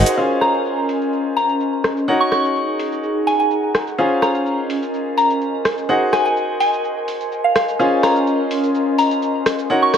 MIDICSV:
0, 0, Header, 1, 5, 480
1, 0, Start_track
1, 0, Key_signature, -5, "major"
1, 0, Tempo, 476190
1, 176, Time_signature, 4, 2, 24, 8
1, 10057, End_track
2, 0, Start_track
2, 0, Title_t, "Synth bell"
2, 0, Program_c, 0, 98
2, 416, Note_on_c, 0, 82, 74
2, 537, Note_off_c, 0, 82, 0
2, 1376, Note_on_c, 0, 82, 82
2, 1497, Note_off_c, 0, 82, 0
2, 2222, Note_on_c, 0, 85, 85
2, 2313, Note_off_c, 0, 85, 0
2, 2335, Note_on_c, 0, 85, 83
2, 2456, Note_off_c, 0, 85, 0
2, 3296, Note_on_c, 0, 80, 80
2, 3377, Note_off_c, 0, 80, 0
2, 3422, Note_on_c, 0, 80, 70
2, 3495, Note_off_c, 0, 80, 0
2, 4255, Note_on_c, 0, 82, 82
2, 4376, Note_off_c, 0, 82, 0
2, 5216, Note_on_c, 0, 82, 83
2, 5337, Note_off_c, 0, 82, 0
2, 6176, Note_on_c, 0, 80, 80
2, 6257, Note_off_c, 0, 80, 0
2, 6303, Note_on_c, 0, 80, 62
2, 6376, Note_off_c, 0, 80, 0
2, 6656, Note_on_c, 0, 80, 82
2, 6777, Note_off_c, 0, 80, 0
2, 7502, Note_on_c, 0, 77, 77
2, 7575, Note_off_c, 0, 77, 0
2, 7617, Note_on_c, 0, 77, 67
2, 7698, Note_off_c, 0, 77, 0
2, 8097, Note_on_c, 0, 82, 79
2, 8217, Note_off_c, 0, 82, 0
2, 9056, Note_on_c, 0, 82, 85
2, 9177, Note_off_c, 0, 82, 0
2, 9903, Note_on_c, 0, 85, 85
2, 9994, Note_off_c, 0, 85, 0
2, 10016, Note_on_c, 0, 85, 83
2, 10057, Note_off_c, 0, 85, 0
2, 10057, End_track
3, 0, Start_track
3, 0, Title_t, "Ambient pad"
3, 0, Program_c, 1, 92
3, 0, Note_on_c, 1, 70, 79
3, 0, Note_on_c, 1, 75, 81
3, 0, Note_on_c, 1, 80, 86
3, 0, Note_on_c, 1, 84, 81
3, 176, Note_on_c, 1, 61, 67
3, 2097, Note_on_c, 1, 63, 71
3, 2187, Note_on_c, 1, 68, 74
3, 2758, Note_on_c, 1, 78, 62
3, 2867, Note_off_c, 1, 61, 0
3, 2867, Note_off_c, 1, 75, 0
3, 2867, Note_off_c, 1, 80, 0
3, 2867, Note_off_c, 1, 84, 0
3, 2868, Note_off_c, 1, 70, 0
3, 2962, Note_on_c, 1, 82, 75
3, 4016, Note_off_c, 1, 78, 0
3, 4016, Note_on_c, 1, 61, 73
3, 4081, Note_on_c, 1, 70, 83
3, 4100, Note_on_c, 1, 75, 71
3, 4129, Note_on_c, 1, 80, 79
3, 4267, Note_on_c, 1, 84, 71
3, 4787, Note_off_c, 1, 63, 0
3, 4787, Note_off_c, 1, 68, 0
3, 4787, Note_off_c, 1, 82, 0
3, 5936, Note_off_c, 1, 61, 0
3, 7856, Note_on_c, 1, 61, 72
3, 9778, Note_on_c, 1, 63, 81
3, 10057, Note_off_c, 1, 61, 0
3, 10057, Note_off_c, 1, 63, 0
3, 10057, Note_off_c, 1, 70, 0
3, 10057, Note_off_c, 1, 75, 0
3, 10057, Note_off_c, 1, 80, 0
3, 10057, Note_off_c, 1, 84, 0
3, 10057, End_track
4, 0, Start_track
4, 0, Title_t, "Upright piano"
4, 0, Program_c, 2, 0
4, 0, Note_on_c, 2, 63, 95
4, 0, Note_on_c, 2, 66, 89
4, 0, Note_on_c, 2, 68, 82
4, 0, Note_on_c, 2, 72, 89
4, 0, Note_on_c, 2, 78, 104
4, 149, Note_off_c, 2, 63, 0
4, 149, Note_off_c, 2, 66, 0
4, 149, Note_off_c, 2, 68, 0
4, 149, Note_off_c, 2, 72, 0
4, 149, Note_off_c, 2, 78, 0
4, 177, Note_on_c, 2, 61, 69
4, 177, Note_on_c, 2, 65, 62
4, 177, Note_on_c, 2, 68, 62
4, 177, Note_on_c, 2, 72, 62
4, 177, Note_on_c, 2, 77, 77
4, 2069, Note_off_c, 2, 61, 0
4, 2069, Note_off_c, 2, 65, 0
4, 2069, Note_off_c, 2, 68, 0
4, 2069, Note_off_c, 2, 72, 0
4, 2069, Note_off_c, 2, 77, 0
4, 2096, Note_on_c, 2, 63, 72
4, 2096, Note_on_c, 2, 66, 65
4, 2096, Note_on_c, 2, 73, 63
4, 2097, Note_on_c, 2, 70, 65
4, 2097, Note_on_c, 2, 78, 78
4, 3989, Note_off_c, 2, 63, 0
4, 3989, Note_off_c, 2, 66, 0
4, 3989, Note_off_c, 2, 70, 0
4, 3989, Note_off_c, 2, 73, 0
4, 3989, Note_off_c, 2, 78, 0
4, 4017, Note_on_c, 2, 61, 69
4, 4017, Note_on_c, 2, 65, 64
4, 4017, Note_on_c, 2, 68, 67
4, 4017, Note_on_c, 2, 72, 64
4, 4017, Note_on_c, 2, 77, 74
4, 5909, Note_off_c, 2, 61, 0
4, 5909, Note_off_c, 2, 65, 0
4, 5909, Note_off_c, 2, 68, 0
4, 5909, Note_off_c, 2, 72, 0
4, 5909, Note_off_c, 2, 77, 0
4, 5936, Note_on_c, 2, 63, 68
4, 5936, Note_on_c, 2, 66, 63
4, 5936, Note_on_c, 2, 72, 66
4, 5937, Note_on_c, 2, 68, 64
4, 5937, Note_on_c, 2, 78, 78
4, 7829, Note_off_c, 2, 63, 0
4, 7829, Note_off_c, 2, 66, 0
4, 7829, Note_off_c, 2, 68, 0
4, 7829, Note_off_c, 2, 72, 0
4, 7829, Note_off_c, 2, 78, 0
4, 7856, Note_on_c, 2, 77, 80
4, 7857, Note_on_c, 2, 61, 68
4, 7857, Note_on_c, 2, 65, 66
4, 7857, Note_on_c, 2, 68, 66
4, 7857, Note_on_c, 2, 72, 61
4, 9749, Note_off_c, 2, 61, 0
4, 9749, Note_off_c, 2, 65, 0
4, 9749, Note_off_c, 2, 68, 0
4, 9749, Note_off_c, 2, 72, 0
4, 9749, Note_off_c, 2, 77, 0
4, 9777, Note_on_c, 2, 63, 71
4, 9777, Note_on_c, 2, 66, 64
4, 9777, Note_on_c, 2, 70, 68
4, 9777, Note_on_c, 2, 73, 64
4, 9777, Note_on_c, 2, 78, 77
4, 10057, Note_off_c, 2, 63, 0
4, 10057, Note_off_c, 2, 66, 0
4, 10057, Note_off_c, 2, 70, 0
4, 10057, Note_off_c, 2, 73, 0
4, 10057, Note_off_c, 2, 78, 0
4, 10057, End_track
5, 0, Start_track
5, 0, Title_t, "Drums"
5, 59, Note_on_c, 9, 38, 32
5, 64, Note_on_c, 9, 42, 55
5, 65, Note_on_c, 9, 82, 45
5, 160, Note_off_c, 9, 38, 0
5, 165, Note_off_c, 9, 42, 0
5, 166, Note_off_c, 9, 82, 0
5, 417, Note_on_c, 9, 37, 55
5, 417, Note_on_c, 9, 46, 91
5, 418, Note_on_c, 9, 82, 66
5, 518, Note_off_c, 9, 37, 0
5, 518, Note_off_c, 9, 46, 0
5, 519, Note_off_c, 9, 82, 0
5, 544, Note_on_c, 9, 82, 36
5, 645, Note_off_c, 9, 82, 0
5, 657, Note_on_c, 9, 82, 29
5, 758, Note_off_c, 9, 82, 0
5, 897, Note_on_c, 9, 46, 90
5, 898, Note_on_c, 9, 82, 68
5, 998, Note_off_c, 9, 46, 0
5, 999, Note_off_c, 9, 82, 0
5, 1025, Note_on_c, 9, 82, 39
5, 1125, Note_off_c, 9, 82, 0
5, 1138, Note_on_c, 9, 82, 29
5, 1239, Note_off_c, 9, 82, 0
5, 1377, Note_on_c, 9, 46, 90
5, 1377, Note_on_c, 9, 82, 66
5, 1477, Note_off_c, 9, 46, 0
5, 1478, Note_off_c, 9, 82, 0
5, 1504, Note_on_c, 9, 82, 40
5, 1605, Note_off_c, 9, 82, 0
5, 1618, Note_on_c, 9, 82, 31
5, 1718, Note_off_c, 9, 82, 0
5, 1857, Note_on_c, 9, 37, 67
5, 1857, Note_on_c, 9, 46, 93
5, 1857, Note_on_c, 9, 82, 73
5, 1957, Note_off_c, 9, 37, 0
5, 1957, Note_off_c, 9, 46, 0
5, 1958, Note_off_c, 9, 82, 0
5, 1984, Note_on_c, 9, 82, 39
5, 2085, Note_off_c, 9, 82, 0
5, 2098, Note_on_c, 9, 82, 29
5, 2199, Note_off_c, 9, 82, 0
5, 2337, Note_on_c, 9, 37, 55
5, 2337, Note_on_c, 9, 46, 95
5, 2337, Note_on_c, 9, 82, 63
5, 2437, Note_off_c, 9, 37, 0
5, 2437, Note_off_c, 9, 46, 0
5, 2438, Note_off_c, 9, 82, 0
5, 2465, Note_on_c, 9, 82, 37
5, 2565, Note_off_c, 9, 82, 0
5, 2578, Note_on_c, 9, 82, 28
5, 2679, Note_off_c, 9, 82, 0
5, 2817, Note_on_c, 9, 46, 98
5, 2818, Note_on_c, 9, 82, 62
5, 2918, Note_off_c, 9, 46, 0
5, 2919, Note_off_c, 9, 82, 0
5, 2944, Note_on_c, 9, 82, 38
5, 3045, Note_off_c, 9, 82, 0
5, 3058, Note_on_c, 9, 82, 30
5, 3159, Note_off_c, 9, 82, 0
5, 3296, Note_on_c, 9, 46, 97
5, 3297, Note_on_c, 9, 82, 66
5, 3397, Note_off_c, 9, 46, 0
5, 3398, Note_off_c, 9, 82, 0
5, 3424, Note_on_c, 9, 82, 39
5, 3525, Note_off_c, 9, 82, 0
5, 3537, Note_on_c, 9, 82, 31
5, 3638, Note_off_c, 9, 82, 0
5, 3776, Note_on_c, 9, 37, 69
5, 3776, Note_on_c, 9, 46, 99
5, 3777, Note_on_c, 9, 82, 67
5, 3877, Note_off_c, 9, 37, 0
5, 3877, Note_off_c, 9, 46, 0
5, 3878, Note_off_c, 9, 82, 0
5, 3904, Note_on_c, 9, 82, 39
5, 4005, Note_off_c, 9, 82, 0
5, 4017, Note_on_c, 9, 82, 30
5, 4118, Note_off_c, 9, 82, 0
5, 4256, Note_on_c, 9, 37, 59
5, 4256, Note_on_c, 9, 46, 96
5, 4257, Note_on_c, 9, 82, 62
5, 4357, Note_off_c, 9, 37, 0
5, 4357, Note_off_c, 9, 46, 0
5, 4358, Note_off_c, 9, 82, 0
5, 4384, Note_on_c, 9, 82, 37
5, 4485, Note_off_c, 9, 82, 0
5, 4497, Note_on_c, 9, 82, 29
5, 4598, Note_off_c, 9, 82, 0
5, 4736, Note_on_c, 9, 46, 95
5, 4737, Note_on_c, 9, 82, 67
5, 4837, Note_off_c, 9, 46, 0
5, 4838, Note_off_c, 9, 82, 0
5, 4864, Note_on_c, 9, 82, 38
5, 4965, Note_off_c, 9, 82, 0
5, 4977, Note_on_c, 9, 82, 29
5, 5078, Note_off_c, 9, 82, 0
5, 5217, Note_on_c, 9, 46, 97
5, 5217, Note_on_c, 9, 82, 64
5, 5317, Note_off_c, 9, 46, 0
5, 5318, Note_off_c, 9, 82, 0
5, 5344, Note_on_c, 9, 82, 39
5, 5445, Note_off_c, 9, 82, 0
5, 5458, Note_on_c, 9, 82, 29
5, 5559, Note_off_c, 9, 82, 0
5, 5697, Note_on_c, 9, 37, 74
5, 5697, Note_on_c, 9, 46, 100
5, 5697, Note_on_c, 9, 82, 68
5, 5797, Note_off_c, 9, 37, 0
5, 5797, Note_off_c, 9, 46, 0
5, 5798, Note_off_c, 9, 82, 0
5, 5824, Note_on_c, 9, 82, 38
5, 5925, Note_off_c, 9, 82, 0
5, 5938, Note_on_c, 9, 82, 32
5, 6039, Note_off_c, 9, 82, 0
5, 6177, Note_on_c, 9, 37, 57
5, 6177, Note_on_c, 9, 46, 98
5, 6178, Note_on_c, 9, 82, 66
5, 6278, Note_off_c, 9, 37, 0
5, 6278, Note_off_c, 9, 46, 0
5, 6279, Note_off_c, 9, 82, 0
5, 6305, Note_on_c, 9, 82, 37
5, 6405, Note_off_c, 9, 82, 0
5, 6418, Note_on_c, 9, 82, 30
5, 6519, Note_off_c, 9, 82, 0
5, 6657, Note_on_c, 9, 46, 95
5, 6658, Note_on_c, 9, 82, 64
5, 6758, Note_off_c, 9, 46, 0
5, 6759, Note_off_c, 9, 82, 0
5, 6785, Note_on_c, 9, 82, 38
5, 6885, Note_off_c, 9, 82, 0
5, 6898, Note_on_c, 9, 82, 30
5, 6998, Note_off_c, 9, 82, 0
5, 7136, Note_on_c, 9, 46, 97
5, 7137, Note_on_c, 9, 82, 66
5, 7237, Note_off_c, 9, 46, 0
5, 7238, Note_off_c, 9, 82, 0
5, 7264, Note_on_c, 9, 82, 40
5, 7365, Note_off_c, 9, 82, 0
5, 7377, Note_on_c, 9, 82, 31
5, 7478, Note_off_c, 9, 82, 0
5, 7616, Note_on_c, 9, 37, 77
5, 7616, Note_on_c, 9, 46, 101
5, 7617, Note_on_c, 9, 82, 67
5, 7717, Note_off_c, 9, 37, 0
5, 7717, Note_off_c, 9, 46, 0
5, 7718, Note_off_c, 9, 82, 0
5, 7744, Note_on_c, 9, 82, 41
5, 7845, Note_off_c, 9, 82, 0
5, 7857, Note_on_c, 9, 82, 32
5, 7958, Note_off_c, 9, 82, 0
5, 8097, Note_on_c, 9, 37, 61
5, 8097, Note_on_c, 9, 46, 93
5, 8098, Note_on_c, 9, 82, 72
5, 8198, Note_off_c, 9, 37, 0
5, 8198, Note_off_c, 9, 46, 0
5, 8198, Note_off_c, 9, 82, 0
5, 8224, Note_on_c, 9, 82, 37
5, 8325, Note_off_c, 9, 82, 0
5, 8338, Note_on_c, 9, 82, 31
5, 8438, Note_off_c, 9, 82, 0
5, 8577, Note_on_c, 9, 46, 93
5, 8578, Note_on_c, 9, 82, 72
5, 8677, Note_off_c, 9, 46, 0
5, 8678, Note_off_c, 9, 82, 0
5, 8704, Note_on_c, 9, 82, 39
5, 8805, Note_off_c, 9, 82, 0
5, 8817, Note_on_c, 9, 82, 32
5, 8918, Note_off_c, 9, 82, 0
5, 9056, Note_on_c, 9, 46, 91
5, 9057, Note_on_c, 9, 82, 70
5, 9157, Note_off_c, 9, 46, 0
5, 9158, Note_off_c, 9, 82, 0
5, 9183, Note_on_c, 9, 82, 42
5, 9284, Note_off_c, 9, 82, 0
5, 9297, Note_on_c, 9, 82, 33
5, 9398, Note_off_c, 9, 82, 0
5, 9536, Note_on_c, 9, 37, 74
5, 9536, Note_on_c, 9, 46, 103
5, 9537, Note_on_c, 9, 82, 75
5, 9637, Note_off_c, 9, 37, 0
5, 9637, Note_off_c, 9, 46, 0
5, 9638, Note_off_c, 9, 82, 0
5, 9664, Note_on_c, 9, 82, 41
5, 9765, Note_off_c, 9, 82, 0
5, 9778, Note_on_c, 9, 82, 32
5, 9878, Note_off_c, 9, 82, 0
5, 10016, Note_on_c, 9, 37, 59
5, 10016, Note_on_c, 9, 46, 89
5, 10017, Note_on_c, 9, 82, 75
5, 10057, Note_off_c, 9, 37, 0
5, 10057, Note_off_c, 9, 46, 0
5, 10057, Note_off_c, 9, 82, 0
5, 10057, End_track
0, 0, End_of_file